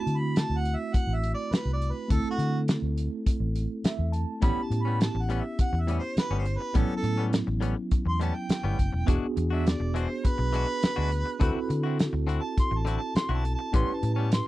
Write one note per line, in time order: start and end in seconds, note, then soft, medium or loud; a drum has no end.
0.00 2.05 A3 medium
0.00 2.06 C4 soft
0.00 2.06 E4 medium
0.00 2.07 F#4 medium
0.00 0.19 A5 medium
0.06 0.44 D3 medium
0.06 closed hi-hat medium
0.17 0.39 B5 medium
0.36 0.59 A5 medium
0.36 snare loud
0.36 closed hi-hat medium
0.50 0.75 D2 medium
0.57 0.77 F#5 medium
0.65 closed hi-hat medium
0.76 0.96 E5 medium
0.94 1.16 F#5 medium
0.94 kick medium
0.94 closed hi-hat medium
1.07 1.32 A1 medium
1.14 1.32 E5 medium
1.23 closed hi-hat medium
1.34 1.55 D5 loud
1.51 1.72 B4 loud
1.51 muted fingered electric bass stroke soft
1.51 snare loud
1.51 closed hi-hat medium
1.65 1.91 C2 medium
1.73 1.93 D5 medium
1.82 closed hi-hat medium
1.92 2.12 B4 medium
2.08 2.23 D2 medium
2.08 4.38 A3 medium
2.08 4.38 C4 medium
2.08 4.39 E4 medium
2.08 2.29 A4 loud
2.08 4.40 A4 medium
2.08 kick loud
2.08 closed hi-hat medium
2.24 muted fingered electric bass stroke soft
2.31 2.58 F#4 loud
2.38 2.76 D3 loud
2.38 closed hi-hat medium
2.68 snare loud
2.68 closed hi-hat medium
2.82 3.07 D2 medium
2.97 closed hi-hat medium
3.26 kick medium
3.26 closed hi-hat medium
3.40 3.65 A1 loud
3.55 closed hi-hat medium
3.84 4.12 E5 medium
3.84 muted fingered electric bass stroke soft
3.84 snare loud
3.84 closed hi-hat medium
3.99 4.24 E2 medium
4.12 4.40 A5 medium
4.12 closed hi-hat medium
4.40 4.55 A1 medium
4.40 4.60 A2 medium
4.40 4.60 G3 medium
4.40 6.70 B3 medium
4.40 4.60 B3 medium
4.40 6.71 C#4 medium
4.40 4.61 C#4 medium
4.40 6.71 E4 medium
4.40 6.72 G4 medium
4.40 4.65 B5 loud
4.40 kick loud
4.40 closed hi-hat medium
4.57 muted fingered electric bass stroke soft
4.63 4.83 A5 medium
4.70 5.08 A2 medium
4.70 muted clean electric guitar stroke soft
4.70 closed hi-hat medium
4.82 5.00 C#4 soft
4.82 5.02 B5 loud
4.87 4.99 G3 soft
4.87 5.00 B3 soft
5.00 5.23 A5 medium
5.00 muted clean electric guitar stroke soft
5.00 snare loud
5.00 closed hi-hat medium
5.15 5.40 A1 medium
5.15 muted clean electric guitar stroke soft
5.22 5.42 F#5 medium
5.29 5.44 A2 medium
5.29 5.44 G3 medium
5.29 5.44 B3 medium
5.29 5.43 C#4 medium
5.29 closed hi-hat medium
5.41 5.59 E5 medium
5.59 5.81 F#5 medium
5.59 kick medium
5.59 closed hi-hat medium
5.73 5.98 E2 medium
5.73 muted clean electric guitar stroke soft
5.80 5.98 E5 medium
5.87 6.02 A2 medium
5.87 6.03 G3 medium
5.87 6.02 B3 medium
5.87 6.01 C#4 medium
5.87 closed hi-hat medium
5.99 6.17 C5 loud
5.99 muted clean electric guitar stroke soft
6.16 6.37 B4 medium
6.16 muted fingered electric bass stroke soft
6.16 snare loud
6.16 closed hi-hat medium
6.30 6.56 G1 medium
6.30 6.45 A2 soft
6.30 6.46 G3 medium
6.30 6.46 B3 medium
6.30 6.46 C#4 medium
6.39 6.59 C5 medium
6.45 muted clean electric guitar stroke soft
6.45 closed hi-hat medium
6.58 6.79 B4 medium
6.58 muted clean electric guitar stroke soft
6.74 6.87 A1 medium
6.74 6.92 A2 medium
6.74 9.05 F#3 medium
6.74 6.93 G3 medium
6.74 9.03 B3 medium
6.74 6.93 B3 medium
6.74 9.04 C#4 medium
6.74 6.93 C#4 medium
6.74 9.04 E4 medium
6.74 6.95 A4 medium
6.74 kick loud
6.74 closed hi-hat medium
6.97 7.24 A4 loud
7.03 7.41 A2 medium
7.03 muted clean electric guitar stroke soft
7.03 closed hi-hat medium
7.18 7.32 G3 soft
7.18 7.33 B3 soft
7.18 7.33 C#4 soft
7.32 muted clean electric guitar stroke soft
7.32 snare loud
7.32 closed hi-hat medium
7.47 7.73 A1 medium
7.47 muted clean electric guitar stroke medium
7.61 7.76 A2 medium
7.61 7.76 G3 medium
7.61 7.76 B3 medium
7.61 7.75 C#4 medium
7.61 closed hi-hat medium
7.91 kick medium
7.91 closed hi-hat medium
8.06 8.31 E2 medium
8.06 8.21 C6 loud
8.06 muted clean electric guitar stroke soft
8.20 8.35 A2 medium
8.20 8.35 G3 medium
8.20 8.34 B3 medium
8.20 8.33 C#4 medium
8.20 8.37 A5 medium
8.20 closed hi-hat medium
8.34 9.06 G5 loud
8.34 muted clean electric guitar stroke soft
8.49 muted fingered electric bass stroke soft
8.49 snare medium
8.49 closed hi-hat medium
8.63 8.77 G1 medium
8.63 8.77 A2 soft
8.63 8.78 G3 medium
8.63 8.79 B3 medium
8.63 8.78 C#4 medium
8.79 8.92 F#1 medium
8.79 kick medium
8.79 closed hi-hat medium
8.93 9.07 E1 medium
8.93 muted clean electric guitar stroke soft
9.06 9.21 E1 medium
9.06 9.25 E3 medium
9.06 9.25 G#3 medium
9.06 11.36 B3 medium
9.06 11.36 D4 medium
9.06 9.26 D4 loud
9.06 11.37 F#4 medium
9.06 9.26 F#4 loud
9.06 11.37 G#4 medium
9.06 kick loud
9.06 closed hi-hat medium
9.23 muted fingered electric bass stroke soft
9.37 9.74 E2 medium
9.37 muted clean electric guitar stroke soft
9.37 closed hi-hat medium
9.50 9.65 G#3 soft
9.50 9.66 D4 soft
9.50 9.66 F#4 medium
9.50 9.69 E5 medium
9.66 9.95 D5 medium
9.66 muted clean electric guitar stroke soft
9.66 snare loud
9.66 closed hi-hat medium
9.80 10.05 E1 medium
9.80 muted clean electric guitar stroke soft
9.94 10.09 E3 medium
9.94 10.09 G#3 medium
9.94 10.09 D4 medium
9.94 10.08 F#4 medium
9.94 10.28 C5 medium
9.94 closed hi-hat medium
10.09 muted clean electric guitar stroke soft
10.25 11.96 B4 loud
10.25 kick medium
10.25 closed hi-hat medium
10.38 10.64 B1 medium
10.38 muted clean electric guitar stroke soft
10.53 10.68 E3 medium
10.53 10.68 G#3 medium
10.53 10.67 D4 medium
10.53 10.66 F#4 medium
10.53 closed hi-hat medium
10.67 muted clean electric guitar stroke medium
10.83 muted fingered electric bass stroke soft
10.83 snare loud
10.83 closed hi-hat medium
10.96 11.22 D2 medium
10.96 11.10 E3 soft
10.96 11.10 G#3 medium
10.96 11.11 D4 medium
10.96 11.11 F#4 medium
11.11 muted clean electric guitar stroke soft
11.11 closed hi-hat medium
11.26 muted clean electric guitar stroke soft
11.39 11.53 D2 medium
11.39 11.58 D3 medium
11.39 13.69 C4 medium
11.39 11.58 C4 medium
11.39 13.70 E4 medium
11.39 11.59 E4 loud
11.39 11.59 F#4 loud
11.39 13.70 F#4 medium
11.39 13.71 A4 medium
11.39 kick loud
11.39 closed hi-hat medium
11.55 muted fingered electric bass stroke soft
11.69 12.07 D3 loud
11.69 muted clean electric guitar stroke soft
11.69 closed hi-hat medium
11.83 11.98 C4 soft
11.83 11.98 E4 medium
11.83 11.98 F#4 medium
11.98 muted clean electric guitar stroke soft
11.98 snare loud
11.98 closed hi-hat medium
12.13 12.38 D2 medium
12.13 muted clean electric guitar stroke soft
12.27 12.42 D3 medium
12.27 12.42 C4 medium
12.27 12.42 E4 medium
12.27 12.41 F#4 medium
12.27 closed hi-hat medium
12.40 12.58 A5 medium
12.40 muted clean electric guitar stroke soft
12.58 12.79 C6 medium
12.58 kick medium
12.58 closed hi-hat medium
12.71 12.96 A1 medium
12.71 muted clean electric guitar stroke soft
12.78 12.96 A5 medium
12.85 13.00 D3 medium
12.85 13.01 C4 medium
12.85 13.00 E4 medium
12.85 12.99 F#4 medium
12.85 closed hi-hat medium
12.97 13.15 A5 loud
12.97 muted clean electric guitar stroke soft
13.15 13.38 C6 medium
13.15 muted fingered electric bass stroke soft
13.15 snare loud
13.15 closed hi-hat medium
13.29 13.54 B1 medium
13.29 13.43 D3 medium
13.29 13.44 C4 medium
13.29 13.44 E4 medium
13.29 13.44 F#4 medium
13.36 13.54 A5 loud
13.44 muted clean electric guitar stroke soft
13.44 closed hi-hat medium
13.55 13.73 A5 loud
13.59 muted clean electric guitar stroke soft
13.72 13.86 A1 medium
13.72 13.91 A2 medium
13.72 13.91 G3 medium
13.72 13.92 B3 medium
13.72 14.47 C#4 medium
13.72 13.92 C#4 medium
13.72 14.47 E4 medium
13.72 14.47 G4 medium
13.72 14.47 B4 medium
13.72 13.96 C6 loud
13.72 kick loud
13.72 closed hi-hat medium
13.95 14.13 A5 loud
14.03 14.40 A2 loud
14.03 muted clean electric guitar stroke soft
14.03 closed hi-hat medium
14.14 14.31 C#4 medium
14.14 14.32 A5 medium
14.18 14.31 G3 soft
14.18 14.31 B3 soft
14.31 14.47 C6 medium
14.31 muted clean electric guitar stroke soft
14.31 snare loud
14.31 closed hi-hat medium